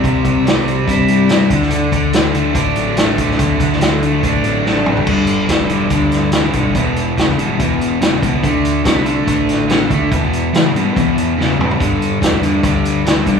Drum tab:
CC |----------------|----------------|----------------|x---------------|
HH |x-x-x-x-x-x-x-x-|x-x-x-x-x-x-x-x-|x-x-x-x-x-x-----|--x-x-x-x-x-x-x-|
SD |----o-------o--o|----o-------o--o|---oo-------o---|----o-----o-o---|
T2 |----------------|----------------|--------------o-|----------------|
FT |----------------|----------------|---------------o|----------------|
BD |o-o-----o-----o-|--o-----o-----o-|o-o-----o-------|o---o---o-----o-|

CC |----------------|----------------|----------------|----------------|
HH |x-x-x-x-x-x-x-x-|x-x-x-x-x-x-x-x-|x-x-x-x-x-x-----|x-x-x-x-x-x-x-x-|
SD |----o-------o---|----o-----o-o---|----o-------o---|----o-------o---|
T2 |----------------|----------------|--------------o-|----------------|
FT |----------------|----------------|---------------o|----------------|
BD |o---o---o-----o-|o---o---o-----o-|o-------o-------|o---o---o-----o-|